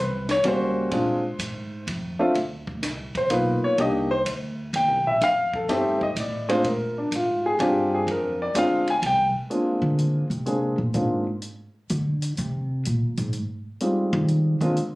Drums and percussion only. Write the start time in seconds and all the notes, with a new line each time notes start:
0.29 snare, ride
0.44 kick, ride
0.91 kick, ride
1.39 kick, hi-hat pedal, ride
1.87 kick, ride
2.35 kick, ride
2.67 kick
2.83 kick, snare, hi-hat pedal, ride
3.15 kick, ride
3.30 kick, ride
3.78 kick, ride
4.26 kick, hi-hat pedal, ride
4.74 kick, ride
5.21 kick, snare, ride
5.54 kick
5.69 kick, snare, ride
6.01 kick
6.16 kick, hi-hat pedal, ride
6.49 ride
6.64 kick, ride
7.12 kick, hi-hat pedal, ride
7.60 kick, ride
8.07 kick, ride
8.55 kick, hi-hat pedal, ride
8.88 ride
9.03 kick, ride
9.51 closed hi-hat
9.99 closed hi-hat
10.31 closed hi-hat
10.46 closed hi-hat
10.94 closed hi-hat
11.42 closed hi-hat
11.90 closed hi-hat
12.22 closed hi-hat
12.37 closed hi-hat
12.85 closed hi-hat
13.17 closed hi-hat
13.33 closed hi-hat
13.80 closed hi-hat
14.28 closed hi-hat
14.61 closed hi-hat
14.77 closed hi-hat